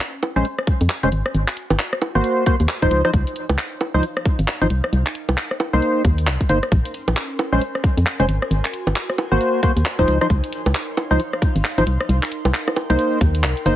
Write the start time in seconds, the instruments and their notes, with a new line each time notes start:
Already playing: analog synth pad C#4
0.00 clap
0.23 closed hi-hat, high bongo
0.27 analog synth pad G#5
0.36 fm bass A#1, synth stab G#3 C#4 C5
0.45 closed hi-hat
0.59 cross-stick
0.67 kick, closed hi-hat
0.81 fm bass F2, closed hi-hat
0.90 clap
1.03 fm bass F1, synth stab G#3 C#4 C5, closed hi-hat
1.12 fm bass G#1, analog synth pad F#4, closed hi-hat
1.26 cross-stick
1.35 fm bass G#1, closed hi-hat
1.48 clap, closed hi-hat
1.57 closed hi-hat
1.70 fm bass G#1, closed hi-hat, high bongo
1.79 clap
1.93 cross-stick
2.02 closed hi-hat, high bongo
2.15 fm bass G#1, synth stab A#3 F#4 C5
2.24 closed hi-hat
2.46 synth stab A#3 F#4 C5, kick, closed hi-hat
2.60 fm bass D#2, closed hi-hat
2.69 clap
2.82 fm bass D#1, synth stab F3 D#4 C5, kick, closed hi-hat
2.91 fm bass C#2, analog synth pad D#4, closed hi-hat
3.05 synth stab F3 D#4 C5, analog synth pad C#5, cross-stick
3.14 fm bass C#2, kick, closed hi-hat
3.27 closed hi-hat
3.36 closed hi-hat
3.49 fm bass C#2, analog synth pad F5, closed hi-hat, high bongo
3.58 clap
3.81 closed hi-hat, high bongo
3.94 fm bass C#2, synth stab F3 D#4 C5
4.03 closed hi-hat
4.17 cross-stick
4.25 kick, closed hi-hat
4.39 fm bass G#1, closed hi-hat
4.48 clap
4.61 fm bass G#1, synth stab F3 D#4 C5, closed hi-hat
4.70 fm bass C2, closed hi-hat
4.84 cross-stick
4.89 fm bass C2, analog synth pad A#4, closed hi-hat
5.06 clap, closed hi-hat
5.15 analog synth pad G5, closed hi-hat
5.29 fm bass C2, closed hi-hat, high bongo
5.37 clap
5.51 analog synth pad C6, cross-stick
5.60 closed hi-hat, high bongo
5.73 fm bass C2, synth stab A#3 D#4 C5
5.82 closed hi-hat
6.05 fm bass D#2, kick, closed hi-hat
6.18 closed hi-hat
6.27 fm bass C2, clap
6.41 kick, closed hi-hat
6.49 fm bass G1, synth stab A#3 D#4 C5, closed hi-hat
6.63 cross-stick, closed hi-hat
6.72 fm bass A#1, analog synth pad C#4, kick, closed hi-hat, tambourine
6.85 closed hi-hat, tambourine
6.94 closed hi-hat, tambourine
7.08 fm bass A#1, closed hi-hat, tambourine, high bongo
7.17 clap, tambourine
7.30 tambourine
7.39 closed hi-hat, tambourine, high bongo
7.43 analog synth pad G#5
7.53 fm bass A#1, synth stab G#3 C#4 C5, tambourine
7.62 closed hi-hat, tambourine
7.75 cross-stick, tambourine
7.84 kick, closed hi-hat, tambourine
7.97 fm bass F2, closed hi-hat, tambourine
8.06 clap, tambourine
8.20 fm bass F1, synth stab G#3 C#4 C5, closed hi-hat, tambourine
8.28 fm bass G#1, analog synth pad F#4, closed hi-hat, tambourine
8.42 cross-stick, tambourine
8.51 fm bass G#1, closed hi-hat, tambourine
8.65 clap, closed hi-hat, tambourine
8.73 closed hi-hat, tambourine
8.87 fm bass G#1, closed hi-hat, tambourine, high bongo
8.96 clap, tambourine
9.10 cross-stick, tambourine
9.18 closed hi-hat, tambourine, high bongo
9.32 fm bass G#1, synth stab A#3 F#4 C5, tambourine
9.41 closed hi-hat, tambourine
9.54 tambourine
9.63 synth stab A#3 F#4 C5, kick, closed hi-hat, tambourine
9.76 fm bass D#2, closed hi-hat, tambourine
9.85 clap, tambourine
9.99 fm bass D#1, synth stab F3 D#4 C5, kick, closed hi-hat, tambourine
10.08 fm bass C#2, analog synth pad D#4, closed hi-hat, tambourine
10.21 synth stab F3 D#4 C5, cross-stick, tambourine
10.30 fm bass C#2, kick, closed hi-hat, tambourine
10.40 analog synth pad C#5, closed hi-hat, tambourine
10.53 closed hi-hat, tambourine
10.66 fm bass C#2, closed hi-hat, tambourine, high bongo
10.75 clap, tambourine
10.89 analog synth pad F5, tambourine
10.97 closed hi-hat, tambourine, high bongo
11.11 fm bass C#2, synth stab F3 D#4 C5, tambourine
11.20 closed hi-hat, tambourine
11.33 cross-stick, tambourine
11.42 kick, closed hi-hat, tambourine
11.56 fm bass G#1, closed hi-hat, tambourine
11.65 clap, tambourine
11.78 fm bass G#1, synth stab F3 D#4 C5, closed hi-hat, tambourine
11.87 fm bass C2, closed hi-hat, tambourine
12.01 cross-stick, tambourine
12.05 fm bass C2, analog synth pad A#4
12.09 closed hi-hat, tambourine
12.23 clap, closed hi-hat, tambourine
12.32 closed hi-hat, tambourine
12.45 fm bass C2, closed hi-hat, tambourine, high bongo
12.54 clap, tambourine
12.60 analog synth pad G5
12.68 cross-stick, tambourine, high bongo
12.76 closed hi-hat, tambourine, high bongo
12.90 fm bass C2, synth stab A#3 D#4 C5, closed hi-hat, tambourine
12.99 closed hi-hat, tambourine
13.12 tambourine
13.21 fm bass D#2, kick, closed hi-hat, tambourine
13.35 closed hi-hat, tambourine
13.44 fm bass C2, clap, tambourine
13.57 closed hi-hat, tambourine
13.66 fm bass G1, synth stab A#3 D#4 C5, closed hi-hat, tambourine